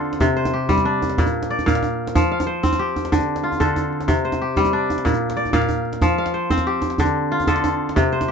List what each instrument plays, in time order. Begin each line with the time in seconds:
Already playing: kora D3 C4 F4 G4 A4
0.05 djembe slap
0.13 djembe slap
0.20 kora C3, djembe tone, djembe bass
0.36 kora C5
0.45 djembe slap, djembe tone
0.53 kora G4
0.69 kora G3, djembe bass
0.78 djembe slap, djembe tone
0.85 kora D4, djembe slap
0.94 djembe slap
1.02 djembe tone
1.09 djembe slap
1.18 kora A#2, djembe slap, djembe bass
1.26 djembe slap, djembe tone
1.34 djembe slap
1.43 djembe slap
1.50 kora D5
1.59 djembe slap, djembe tone
1.66 kora A#2 F5, djembe bass
1.75 djembe slap
1.83 djembe tone
2.07 djembe slap
2.15 kora F3, djembe tone, djembe bass
2.32 kora F5
2.40 djembe slap, djembe tone
2.47 kora C5, djembe slap
2.63 kora C4, djembe bass
2.73 djembe slap, djembe tone
2.79 kora G4, djembe slap
2.96 djembe tone
3.05 djembe slap
3.12 kora D3, djembe bass
3.20 djembe slap, djembe tone
3.28 djembe slap
3.36 djembe slap
3.43 kora F4, djembe slap
3.52 djembe tone
3.60 kora D3 A4, djembe bass
3.76 djembe tone
3.92 djembe slap
4.00 djembe slap
4.08 kora C3, djembe tone, djembe bass
4.25 kora C5
4.32 djembe slap, djembe tone
4.41 kora G4
4.57 kora G3, djembe bass
4.65 djembe slap, djembe tone
4.73 kora D4, djembe slap
4.90 djembe tone
4.98 djembe slap
5.05 kora A#2, djembe bass
5.14 djembe slap, djembe tone
5.22 djembe slap
5.30 djembe slap
5.37 kora D5, djembe slap
5.45 djembe tone
5.53 kora A#2 F5, djembe bass
5.62 djembe slap
5.69 djembe tone
5.85 djembe slap
5.93 djembe slap
6.02 kora F3, djembe tone, djembe bass
6.18 kora F5
6.26 djembe slap
6.34 kora C5, djembe slap
6.50 kora C4, djembe bass
6.58 djembe slap, djembe tone
6.66 kora G4, djembe slap
6.82 djembe tone
6.90 djembe slap
6.98 kora D3, djembe bass
7.06 djembe slap, djembe tone
7.31 kora F4, djembe slap
7.40 djembe tone
7.47 kora D3 A4, djembe bass
7.56 djembe slap
7.64 djembe tone
7.89 djembe slap
7.96 kora C3, djembe slap, djembe tone, djembe bass
8.12 kora C5, djembe slap
8.21 djembe slap, djembe tone
8.28 kora G4